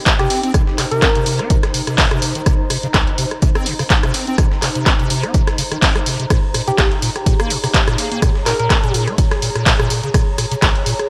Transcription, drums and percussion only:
0.06 kick, snare, clap, closed hi-hat, tambourine
0.19 cross-stick, closed hi-hat
0.30 snare, open hi-hat, tambourine
0.43 closed hi-hat
0.54 kick, cross-stick, closed hi-hat, tambourine
0.67 snare
0.78 cross-stick, clap, open hi-hat, tambourine
0.91 closed hi-hat
1.02 kick, cross-stick, snare, clap, closed hi-hat, tambourine
1.15 closed hi-hat
1.26 open hi-hat, tambourine
1.39 cross-stick, closed hi-hat
1.50 kick, closed hi-hat, tambourine
1.63 cross-stick, snare, closed hi-hat
1.74 open hi-hat, tambourine
1.87 cross-stick, closed hi-hat
1.98 kick, snare, clap, open hi-hat, tambourine
2.11 cross-stick, closed hi-hat
2.22 open hi-hat, tambourine
2.35 closed hi-hat
2.46 kick, cross-stick, closed hi-hat, tambourine
2.70 cross-stick, open hi-hat, tambourine
2.83 closed hi-hat
2.94 kick, cross-stick, snare, clap, closed hi-hat, tambourine
3.07 closed hi-hat
3.18 open hi-hat, tambourine
3.31 cross-stick, closed hi-hat
3.42 kick, closed hi-hat, tambourine
3.55 cross-stick, closed hi-hat
3.66 open hi-hat, tambourine
3.79 cross-stick, open hi-hat
3.90 kick, snare, clap, closed hi-hat, tambourine
4.03 cross-stick, closed hi-hat
4.14 snare, open hi-hat, tambourine
4.27 closed hi-hat
4.38 kick, cross-stick, closed hi-hat, tambourine
4.52 snare
4.62 cross-stick, clap, open hi-hat, tambourine
4.75 closed hi-hat
4.86 kick, cross-stick, snare, clap, closed hi-hat, tambourine
4.99 closed hi-hat
5.10 open hi-hat, tambourine
5.23 cross-stick, closed hi-hat
5.34 kick, closed hi-hat, tambourine
5.47 cross-stick, snare, closed hi-hat
5.58 open hi-hat, tambourine
5.72 cross-stick, closed hi-hat
5.82 kick, snare, clap, open hi-hat, tambourine
5.96 cross-stick, closed hi-hat
6.06 open hi-hat, tambourine
6.20 closed hi-hat
6.30 kick, cross-stick, closed hi-hat, ride, tambourine
6.54 cross-stick, open hi-hat, tambourine
6.68 closed hi-hat
6.78 kick, cross-stick, snare, clap, closed hi-hat, ride, tambourine
6.92 closed hi-hat
7.02 open hi-hat, tambourine
7.16 cross-stick, closed hi-hat
7.26 kick, closed hi-hat, ride, tambourine
7.40 cross-stick, closed hi-hat
7.50 open hi-hat, tambourine
7.64 cross-stick, open hi-hat
7.74 kick, snare, clap, closed hi-hat, ride, tambourine
7.88 cross-stick, closed hi-hat
7.98 snare, open hi-hat, tambourine
8.12 closed hi-hat
8.22 kick, cross-stick, closed hi-hat, ride, tambourine
8.35 snare
8.46 cross-stick, clap, open hi-hat, tambourine
8.60 closed hi-hat
8.70 kick, cross-stick, snare, clap, closed hi-hat, ride, tambourine
8.84 closed hi-hat
8.94 open hi-hat, tambourine
9.08 cross-stick, closed hi-hat
9.18 kick, closed hi-hat, ride, tambourine
9.31 cross-stick, snare, closed hi-hat
9.42 open hi-hat, tambourine
9.55 cross-stick, closed hi-hat
9.66 kick, snare, clap, open hi-hat, ride, tambourine
9.80 cross-stick, closed hi-hat
9.90 open hi-hat, tambourine
10.03 closed hi-hat
10.14 kick, cross-stick, closed hi-hat, ride, tambourine
10.38 cross-stick, open hi-hat, tambourine
10.51 closed hi-hat
10.62 kick, cross-stick, snare, clap, closed hi-hat, ride, tambourine
10.75 closed hi-hat
10.86 open hi-hat, tambourine
10.99 cross-stick, closed hi-hat

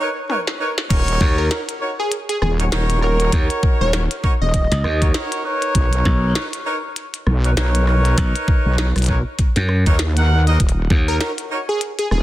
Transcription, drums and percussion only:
0.30 high tom
0.47 snare
0.78 snare
0.90 kick, closed hi-hat, crash
1.08 closed hi-hat
1.21 kick
1.51 snare, closed hi-hat
1.69 closed hi-hat
2.12 closed hi-hat
2.29 closed hi-hat
2.42 cross-stick
2.60 closed hi-hat
2.72 snare, closed hi-hat
2.90 closed hi-hat
3.02 cross-stick
3.20 closed hi-hat
3.32 kick, closed hi-hat
3.50 closed hi-hat
3.63 kick
3.93 snare, closed hi-hat
4.11 closed hi-hat
4.24 kick
4.54 kick, closed hi-hat
4.72 snare, closed hi-hat
4.84 cross-stick
5.02 kick, closed hi-hat
5.14 snare, closed hi-hat
5.32 closed hi-hat
5.62 closed hi-hat
5.75 kick, closed hi-hat
5.93 closed hi-hat
6.05 kick
6.35 snare, closed hi-hat
6.53 closed hi-hat
6.96 closed hi-hat
7.14 closed hi-hat
7.27 cross-stick
7.44 closed hi-hat
7.57 snare, closed hi-hat
7.75 closed hi-hat
7.87 cross-stick
8.05 closed hi-hat
8.18 kick, closed hi-hat
8.36 closed hi-hat
8.48 kick
8.78 snare, closed hi-hat
8.96 cross-stick, closed hi-hat
8.98 closed hi-hat
9.02 closed hi-hat
9.04 closed hi-hat
9.06 kick, closed hi-hat
9.39 kick, closed hi-hat
9.56 snare, closed hi-hat
9.69 cross-stick
9.86 kick, closed hi-hat
9.99 snare, closed hi-hat
10.17 closed hi-hat
10.47 closed hi-hat
10.60 kick, closed hi-hat
10.69 closed hi-hat
10.90 kick
11.21 snare, closed hi-hat
11.38 closed hi-hat
11.81 closed hi-hat
11.99 closed hi-hat
12.11 cross-stick

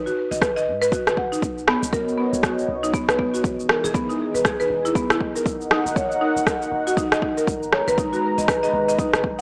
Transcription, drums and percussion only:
0.07 shaker
0.32 shaker
0.42 kick, cross-stick, shaker
0.57 shaker
0.82 shaker
0.92 kick, shaker
1.07 cross-stick, shaker
1.17 kick
1.33 shaker
1.42 kick, shaker
1.58 shaker
1.68 cross-stick
1.83 shaker
1.93 kick, shaker
2.08 shaker
2.34 shaker
2.43 kick, cross-stick, shaker
2.59 shaker
2.84 shaker
2.94 kick, shaker
3.09 cross-stick, shaker
3.19 kick
3.34 shaker
3.44 kick, shaker
3.60 shaker
3.69 cross-stick
3.85 shaker
3.94 kick, shaker
4.10 shaker
4.35 shaker
4.45 kick, cross-stick, shaker
4.60 shaker
4.86 shaker
4.95 kick, shaker
5.10 cross-stick, shaker
5.20 kick
5.36 shaker
5.46 kick, shaker
5.61 shaker
5.71 cross-stick
5.87 shaker
5.96 kick, shaker
6.12 shaker
6.37 shaker
6.47 kick, cross-stick, shaker
6.62 shaker
6.87 shaker
6.97 kick, shaker
7.12 cross-stick, shaker
7.22 kick
7.38 shaker
7.47 kick, shaker
7.63 shaker
7.72 cross-stick
7.88 shaker
7.98 kick, shaker
8.13 shaker
8.38 shaker
8.48 kick, cross-stick, shaker
8.64 shaker
8.89 shaker
8.99 kick, shaker
9.13 cross-stick, shaker
9.24 kick

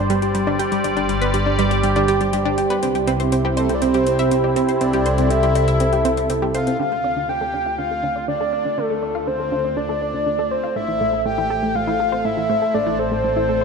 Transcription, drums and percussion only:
0.10 closed hi-hat
0.22 closed hi-hat
0.35 closed hi-hat
0.47 low woodblock
0.59 closed hi-hat
0.72 closed hi-hat
0.84 closed hi-hat
0.97 closed hi-hat
1.09 closed hi-hat
1.22 closed hi-hat
1.34 closed hi-hat
1.59 closed hi-hat, low woodblock
1.71 closed hi-hat
1.83 closed hi-hat
1.96 closed hi-hat
2.08 closed hi-hat
2.21 closed hi-hat
2.33 closed hi-hat
2.58 closed hi-hat
2.70 closed hi-hat
2.83 closed hi-hat
2.95 closed hi-hat
3.07 closed hi-hat
3.20 closed hi-hat
3.32 closed hi-hat
3.57 closed hi-hat, low woodblock
3.69 closed hi-hat
3.82 closed hi-hat
3.94 closed hi-hat
4.07 closed hi-hat
4.19 closed hi-hat
4.31 closed hi-hat
4.44 low woodblock
4.56 closed hi-hat
4.69 closed hi-hat
4.81 closed hi-hat
4.93 closed hi-hat
5.06 closed hi-hat
5.18 closed hi-hat
5.30 closed hi-hat
5.43 closed hi-hat
5.55 closed hi-hat, low woodblock
5.68 closed hi-hat
5.80 closed hi-hat
5.93 closed hi-hat
6.05 closed hi-hat
6.17 closed hi-hat
6.30 closed hi-hat
6.54 closed hi-hat
6.67 closed hi-hat

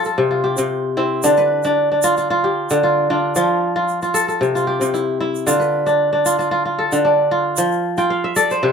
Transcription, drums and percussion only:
0.04 shaker
0.57 shaker
1.23 shaker
1.37 shaker
1.63 shaker
2.02 shaker
2.17 shaker
2.70 shaker
3.35 shaker
3.88 shaker
4.02 shaker
4.15 shaker
4.29 shaker
4.42 shaker
4.56 shaker
4.82 shaker
4.94 shaker
5.35 shaker
5.47 shaker
5.61 shaker
5.87 shaker
6.26 shaker
6.40 shaker
6.92 shaker
7.57 shaker
7.72 shaker
7.97 shaker
8.36 shaker
8.50 shaker

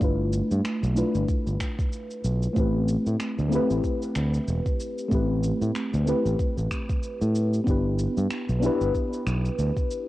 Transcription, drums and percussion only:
0.01 kick, shaker
0.33 shaker
0.51 shaker
0.65 finger snap, shaker
0.83 shaker
0.97 shaker
1.15 shaker
1.29 kick, shaker
1.47 shaker
1.60 finger snap, kick, shaker
1.79 kick, shaker
1.93 shaker
2.11 shaker
2.25 shaker
2.43 shaker
2.56 kick, shaker
2.88 shaker
3.06 shaker
3.20 finger snap, shaker
3.39 shaker
3.52 shaker
3.70 shaker
3.84 kick, shaker
4.02 shaker
4.15 finger snap, shaker
4.34 shaker
4.48 shaker
4.66 kick, shaker
4.80 shaker
4.98 shaker
5.12 kick, shaker
5.44 shaker
5.62 shaker
5.75 finger snap, shaker
5.94 shaker
6.07 shaker
6.26 shaker
6.39 kick, shaker
6.58 shaker
6.71 finger snap, kick, shaker
6.89 kick, shaker
7.03 shaker
7.22 shaker
7.35 shaker
7.54 shaker
7.67 kick, shaker
7.99 shaker
8.17 shaker
8.30 finger snap, shaker
8.49 shaker
8.63 shaker
8.81 shaker
8.95 kick, shaker
9.13 shaker
9.27 finger snap, shaker
9.45 shaker
9.59 shaker
9.77 kick, shaker
9.91 shaker

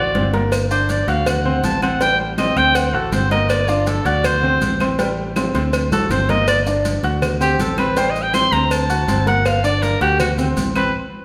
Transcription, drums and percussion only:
0.15 cowbell, high conga
0.34 cowbell, high conga
0.52 cowbell, high conga, claves, maracas
0.71 high conga, maracas
0.89 cowbell, high conga, maracas
1.08 cowbell, high conga, maracas
1.26 cowbell, high conga, low conga, claves, maracas
1.45 high conga, low conga
1.64 cowbell, high conga, maracas
1.82 cowbell, claves, maracas
2.01 cowbell, high conga, maracas
2.20 high conga
2.38 cowbell, high conga, claves, maracas
2.57 cowbell, high conga, maracas
2.75 cowbell, claves, maracas
2.94 high conga
3.12 cowbell, high conga, maracas
3.31 cowbell, high conga, maracas
3.49 cowbell, high conga, claves, maracas
3.68 high conga, maracas
3.87 cowbell, high conga, maracas
4.06 cowbell, high conga, maracas
4.24 cowbell, high conga, low conga, claves, maracas
4.43 high conga, low conga
4.62 cowbell, high conga, maracas
4.80 cowbell, high conga, claves, maracas
4.99 cowbell, high conga, maracas
5.18 high conga
5.36 cowbell, high conga, claves, maracas
5.55 cowbell, high conga, maracas
5.73 cowbell, high conga, claves, maracas
5.92 high conga, maracas
6.11 cowbell, high conga, maracas
6.29 cowbell, low conga, maracas
6.48 cowbell, high conga, claves, maracas
6.66 high conga, maracas
6.85 cowbell, high conga, maracas
7.04 cowbell, high conga, maracas
7.22 cowbell, high conga, low conga, claves, maracas
7.41 high conga, low conga, maracas
7.59 cowbell, high conga, maracas
7.78 cowbell, high conga, claves, maracas
7.97 cowbell, high conga, maracas
8.15 high conga, maracas
8.34 cowbell, high conga, claves, maracas
8.53 cowbell, high conga, maracas
8.71 cowbell, high conga, claves, maracas
8.90 high conga, maracas
9.08 cowbell, high conga, maracas
9.27 cowbell, high conga, maracas
9.45 cowbell, high conga, claves, maracas
9.64 high conga, maracas
9.82 cowbell, high conga, maracas
10.01 cowbell, high conga, maracas
10.20 cowbell, high conga, low conga, claves, maracas
10.38 high conga, low conga, maracas
10.57 cowbell, high conga, maracas
10.75 cowbell, claves, maracas

